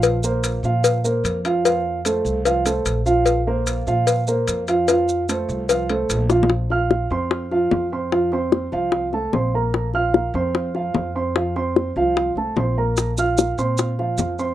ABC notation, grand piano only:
X:1
M:4/4
L:1/8
Q:1/4=148
K:Fphr
V:1 name="Grand piano"
[F,Ff] [B,Bc]2 [F,Ff]2 [B,Bc]2 [F,Ff] | [F,Ff]2 [=A,=Ac]2 [F,Ff] [A,Ac]2 [F,Ff]- | [F,Ff] [B,Bc]2 [F,Ff]2 [B,Bc]2 [F,Ff] | [F,Ff]2 [=A,=Ac]2 [F,Ff] [A,Ac]2 [F,Ff] |
z [Fff']2 [Ccc']2 [F,Ff]2 [Ccc'] | [F,Ff] [Ccc']2 [F,Ff]2 [=A,=A=a] [Ccc'] [B,Bb]- | [B,Bb] [Fff']2 [Ccc']2 [F,Ff]2 [Ccc'] | [F,Ff] [Ccc']2 [F,Ff]2 [=A,=A=a] [Ccc'] [B,Bb]- |
[B,Bb] [Fff']2 [Ccc']2 [F,Ff]2 [Ccc'] |]